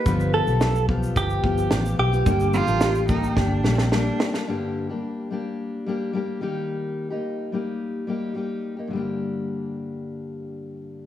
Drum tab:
SH |xx-xxx-xxx-xxx-x|xxxxxxxx--------|----------------|----------------|
SD |----o-------o---|----o---o-ooo-oo|----------------|----------------|
BD |o-----o-o-o-----|o-----o-o-------|----------------|----------------|

SH |----------------|
SD |----------------|
BD |----------------|